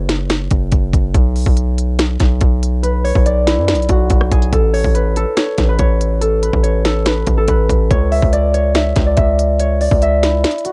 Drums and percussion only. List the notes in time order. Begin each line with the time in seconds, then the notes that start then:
0.09 snare, closed hi-hat
0.30 cross-stick, snare, closed hi-hat
0.51 kick, closed hi-hat
0.72 kick, closed hi-hat
0.93 kick, closed hi-hat
1.14 kick, closed hi-hat
1.36 open hi-hat
1.46 kick
1.57 closed hi-hat
1.78 closed hi-hat
1.99 cross-stick, snare, closed hi-hat
2.20 kick, snare, closed hi-hat
2.41 kick, closed hi-hat
2.63 closed hi-hat
2.84 closed hi-hat
3.05 open hi-hat
3.15 kick
3.26 closed hi-hat
3.47 snare, closed hi-hat
3.68 snare, closed hi-hat
3.75 closed hi-hat
3.82 closed hi-hat
3.89 kick, closed hi-hat
4.10 kick, closed hi-hat
4.21 cross-stick
4.31 kick, closed hi-hat
4.42 closed hi-hat
4.53 kick, closed hi-hat
4.74 open hi-hat
4.84 kick
4.95 closed hi-hat
5.16 closed hi-hat
5.37 cross-stick, snare, closed hi-hat
5.58 kick, snare, closed hi-hat
5.79 kick, closed hi-hat
6.01 closed hi-hat
6.22 closed hi-hat
6.43 closed hi-hat
6.53 kick
6.64 closed hi-hat
6.85 snare, closed hi-hat
7.06 cross-stick, snare, closed hi-hat
7.27 kick, closed hi-hat
7.48 kick, closed hi-hat
7.69 kick, closed hi-hat
7.91 kick, closed hi-hat
8.12 open hi-hat
8.22 kick
8.33 closed hi-hat
8.54 closed hi-hat
8.75 cross-stick, snare, closed hi-hat
8.96 kick, snare, closed hi-hat
9.17 kick, closed hi-hat
9.39 closed hi-hat
9.60 closed hi-hat
9.81 open hi-hat
9.91 kick
10.02 closed hi-hat
10.23 snare, closed hi-hat
10.44 snare, closed hi-hat
10.51 closed hi-hat
10.58 closed hi-hat
10.65 closed hi-hat